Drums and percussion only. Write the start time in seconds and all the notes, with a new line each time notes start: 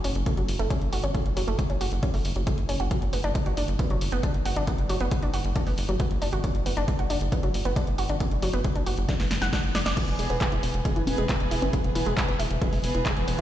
0.04 open hi-hat
0.15 closed hi-hat
0.26 kick, closed hi-hat
0.37 closed hi-hat
0.48 open hi-hat
0.59 closed hi-hat
0.70 kick, closed hi-hat
0.82 closed hi-hat
0.93 open hi-hat
1.04 closed hi-hat
1.15 kick, closed hi-hat
1.26 closed hi-hat
1.37 open hi-hat
1.48 closed hi-hat
1.59 kick, closed hi-hat
1.70 closed hi-hat
1.81 open hi-hat
1.92 closed hi-hat
2.03 kick, closed hi-hat
2.14 open hi-hat
2.25 open hi-hat
2.36 closed hi-hat
2.47 kick, closed hi-hat
2.58 closed hi-hat
2.69 open hi-hat
2.80 closed hi-hat
2.91 kick, closed hi-hat
3.02 closed hi-hat
3.13 open hi-hat
3.24 closed hi-hat
3.35 kick, closed hi-hat
3.46 closed hi-hat
3.57 open hi-hat
3.68 closed hi-hat
3.79 kick, closed hi-hat
3.90 closed hi-hat
4.01 open hi-hat
4.12 closed hi-hat
4.23 kick, closed hi-hat
4.34 closed hi-hat
4.45 open hi-hat
4.56 closed hi-hat
4.67 kick, closed hi-hat
4.78 closed hi-hat
4.89 open hi-hat
5.00 closed hi-hat
5.11 kick, closed hi-hat
5.23 closed hi-hat
5.33 open hi-hat
5.45 closed hi-hat
5.56 kick, closed hi-hat
5.67 open hi-hat
5.78 open hi-hat
5.89 closed hi-hat
6.00 kick, closed hi-hat
6.11 closed hi-hat
6.22 open hi-hat
6.33 closed hi-hat
6.44 kick, closed hi-hat
6.55 closed hi-hat
6.66 open hi-hat
6.77 closed hi-hat
6.88 kick, closed hi-hat
6.99 closed hi-hat
7.10 open hi-hat
7.21 closed hi-hat
7.32 kick, closed hi-hat
7.43 closed hi-hat
7.54 open hi-hat
7.65 closed hi-hat
7.76 kick, closed hi-hat
7.87 closed hi-hat
7.98 open hi-hat
8.09 closed hi-hat
8.20 kick, closed hi-hat
8.31 closed hi-hat
8.42 open hi-hat
8.53 closed hi-hat
8.64 kick, closed hi-hat
8.76 closed hi-hat
8.86 open hi-hat
8.98 closed hi-hat
9.09 kick, snare, closed hi-hat
9.20 snare, open hi-hat
9.31 snare, open hi-hat
9.42 snare, closed hi-hat
9.53 kick, snare, closed hi-hat
9.64 closed hi-hat
9.75 snare, open hi-hat
9.86 snare, closed hi-hat
9.97 kick, closed hi-hat, crash
10.08 closed hi-hat
10.19 open hi-hat
10.30 closed hi-hat
10.41 kick, clap, closed hi-hat
10.52 closed hi-hat
10.63 open hi-hat
10.74 closed hi-hat
10.85 kick, closed hi-hat
10.96 closed hi-hat
11.07 open hi-hat, high conga
11.18 closed hi-hat
11.29 kick, clap, closed hi-hat
11.40 closed hi-hat
11.51 open hi-hat
11.62 closed hi-hat, high conga
11.73 kick, closed hi-hat
11.84 closed hi-hat
11.95 open hi-hat
12.07 closed hi-hat
12.17 kick, clap, closed hi-hat
12.29 closed hi-hat
12.40 open hi-hat
12.51 closed hi-hat
12.62 kick, closed hi-hat
12.73 open hi-hat
12.84 open hi-hat
12.95 closed hi-hat
13.06 kick, clap, closed hi-hat
13.17 closed hi-hat
13.28 open hi-hat